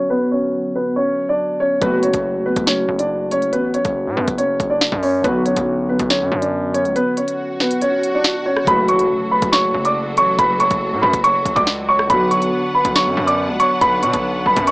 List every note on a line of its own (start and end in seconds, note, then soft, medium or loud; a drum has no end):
0.00 1.76 D3 medium
0.00 1.77 F#3 medium
0.00 1.78 B3 medium
0.00 1.79 F#4 medium
0.10 0.31 B3 medium
0.10 0.30 B4 loud
0.32 0.72 C#4 medium
0.32 0.72 C#5 medium
0.75 0.96 B3 medium
0.75 0.95 B4 medium
0.96 1.27 C#4 medium
0.96 1.26 C#5 medium
1.29 1.59 D4 medium
1.29 1.59 D5 medium
1.60 1.81 C#4 medium
1.60 1.80 C#5 medium
1.81 2.12 F#1 loud
1.81 5.20 F#3 medium
1.81 5.21 A3 medium
1.81 2.02 B3 medium
1.81 2.02 B4 loud
1.81 kick loud
1.81 closed hi-hat medium
1.85 5.22 F#4 medium
2.03 2.44 C#4 medium
2.03 2.43 C#5 medium
2.03 closed hi-hat medium
2.13 2.55 F#1 loud
2.13 kick loud
2.13 closed hi-hat medium
2.46 2.66 B3 medium
2.46 2.66 B4 medium
2.56 2.87 F#1 loud
2.56 kick medium
2.56 closed hi-hat medium
2.67 2.98 C#4 medium
2.67 2.97 C#5 medium
2.67 snare loud
2.67 closed hi-hat medium
2.89 3.54 F#1 loud
2.99 3.30 D4 medium
2.99 3.30 D5 medium
2.99 closed hi-hat medium
3.31 3.52 C#4 medium
3.31 3.52 C#5 medium
3.31 closed hi-hat medium
3.42 closed hi-hat soft
3.53 3.83 A1 loud
3.53 3.73 B3 medium
3.53 3.73 B4 medium
3.53 closed hi-hat medium
3.74 4.15 C#4 medium
3.74 4.15 C#5 medium
3.74 closed hi-hat medium
3.85 4.08 F#1 loud
3.85 kick loud
3.85 closed hi-hat medium
4.06 4.17 A2 loud
4.16 4.27 F#2 loud
4.16 4.37 B3 medium
4.16 4.37 B4 medium
4.28 4.59 F#1 loud
4.28 kick loud
4.28 closed hi-hat medium
4.38 4.69 C#4 medium
4.38 4.69 C#5 medium
4.38 closed hi-hat medium
4.60 4.91 F#1 loud
4.60 kick medium
4.60 closed hi-hat medium
4.70 5.01 D4 medium
4.70 5.01 D5 medium
4.81 snare loud
4.92 5.23 F#2 loud
4.92 kick loud
5.03 5.24 C#4 medium
5.03 5.23 C#5 medium
5.03 open hi-hat medium
5.22 5.55 B1 loud
5.22 8.62 D3 medium
5.22 8.63 F#3 medium
5.22 5.45 B3 medium
5.22 5.44 B4 loud
5.22 kick loud
5.22 closed hi-hat medium
5.26 8.64 B3 medium
5.26 8.65 F#4 medium
5.45 5.86 C#4 medium
5.45 5.86 C#5 medium
5.45 closed hi-hat medium
5.56 5.98 B1 loud
5.56 kick loud
5.56 closed hi-hat medium
5.89 6.10 B3 medium
5.89 6.09 B4 medium
5.99 6.22 B1 loud
5.99 kick medium
5.99 closed hi-hat medium
6.10 6.41 C#4 medium
6.10 6.40 C#5 medium
6.10 snare loud
6.10 closed hi-hat medium
6.21 6.31 F#2 loud
6.32 6.87 F#2 loud
6.41 6.72 D4 medium
6.41 6.72 D5 medium
6.41 closed hi-hat medium
6.74 6.95 C#4 medium
6.74 6.94 C#5 medium
6.74 closed hi-hat medium
6.85 6.95 C#2 loud
6.85 closed hi-hat soft
6.96 7.16 B3 medium
6.96 7.16 B4 loud
6.96 closed hi-hat medium
6.96 swell medium
7.17 7.58 C#4 medium
7.17 7.57 C#5 medium
7.17 closed hi-hat medium
7.28 closed hi-hat medium
7.60 7.81 B3 medium
7.60 7.81 B4 medium
7.60 snare medium
7.71 closed hi-hat medium
7.81 8.12 C#4 medium
7.81 8.12 C#5 medium
7.81 closed hi-hat medium
8.03 closed hi-hat medium
8.15 8.45 D4 medium
8.15 8.44 D5 medium
8.24 snare loud
8.46 8.66 C#4 medium
8.46 8.66 C#5 medium
8.56 cross-stick medium
8.64 9.08 F#1 loud
8.64 12.04 C#3 medium
8.64 12.06 F#3 medium
8.64 12.07 F#3 medium
8.64 12.07 F#4 medium
8.64 12.07 A4 medium
8.64 8.88 B5 loud
8.64 kick loud
8.64 closed hi-hat medium
8.64 impact medium
8.68 12.07 A3 medium
8.68 12.08 F#4 medium
8.68 8.88 B4 medium
8.88 9.29 C#5 medium
8.88 9.29 C#6 medium
8.88 closed hi-hat medium
8.99 closed hi-hat medium
9.31 9.52 B4 medium
9.31 9.52 B5 medium
9.42 9.73 F#1 loud
9.42 kick loud
9.42 closed hi-hat medium
9.52 9.83 C#5 medium
9.52 9.83 C#6 medium
9.52 snare loud
9.52 closed hi-hat medium
9.74 10.19 F#1 loud
9.85 10.16 D5 medium
9.85 10.15 D6 medium
9.85 closed hi-hat medium
10.17 10.38 A1 loud
10.17 10.38 C#5 medium
10.17 10.38 C#6 medium
10.17 closed hi-hat medium
10.38 10.69 F#1 loud
10.38 10.59 B4 medium
10.38 10.59 B5 medium
10.38 kick loud
10.38 closed hi-hat medium
10.60 11.01 C#5 medium
10.60 11.00 C#6 medium
10.60 closed hi-hat medium
10.71 10.94 F#1 loud
10.71 kick loud
10.71 closed hi-hat medium
10.92 11.02 A2 loud
11.02 11.13 F#2 loud
11.02 11.23 B4 medium
11.02 11.23 B5 medium
11.13 11.44 F#1 loud
11.13 kick loud
11.13 closed hi-hat medium
11.24 11.55 C#5 medium
11.24 11.54 C#6 loud
11.24 closed hi-hat medium
11.46 11.56 F#1 loud
11.46 kick medium
11.46 closed hi-hat medium
11.56 12.08 C#2 loud
11.56 11.87 D5 medium
11.56 11.86 D6 medium
11.56 kick loud
11.56 closed hi-hat soft
11.67 snare loud
11.89 12.09 C#5 medium
11.89 12.09 C#6 medium
11.99 cross-stick medium
12.07 12.51 B1 loud
12.07 14.71 D3 medium
12.07 14.71 F#3 medium
12.07 14.71 B3 medium
12.07 14.71 D4 medium
12.07 14.71 B4 medium
12.07 12.31 B4 medium
12.07 14.71 F#5 medium
12.07 12.30 B5 loud
12.07 kick loud
12.07 closed hi-hat medium
12.12 14.71 B3 medium
12.12 14.71 F#4 medium
12.31 12.72 C#5 medium
12.31 12.72 C#6 medium
12.31 closed hi-hat medium
12.42 closed hi-hat medium
12.75 12.95 B4 medium
12.75 12.95 B5 medium
12.85 13.08 B1 loud
12.85 kick loud
12.85 closed hi-hat medium
12.96 13.26 C#5 medium
12.96 13.26 C#6 medium
12.96 snare loud
12.96 closed hi-hat medium
13.06 13.17 F#2 loud
13.17 13.51 F#2 loud
13.27 13.58 D5 medium
13.27 13.58 D6 medium
13.27 closed hi-hat medium
13.49 13.60 C#2 loud
13.60 13.81 C#5 medium
13.60 13.80 C#6 medium
13.60 closed hi-hat medium
13.81 14.04 B1 loud
13.81 14.02 B4 medium
13.81 14.02 B5 loud
13.81 kick loud
13.81 closed hi-hat medium
14.03 14.13 B2 loud
14.03 14.44 C#5 medium
14.03 14.43 C#6 medium
14.03 closed hi-hat medium
14.13 14.44 B1 loud
14.13 kick loud
14.13 closed hi-hat medium
14.46 14.56 B1 loud
14.46 14.67 B4 medium
14.46 14.67 B5 medium
14.56 14.71 F#2 loud
14.56 kick loud
14.56 closed hi-hat medium
14.67 14.71 C#5 medium
14.67 14.71 C#6 medium
14.67 closed hi-hat medium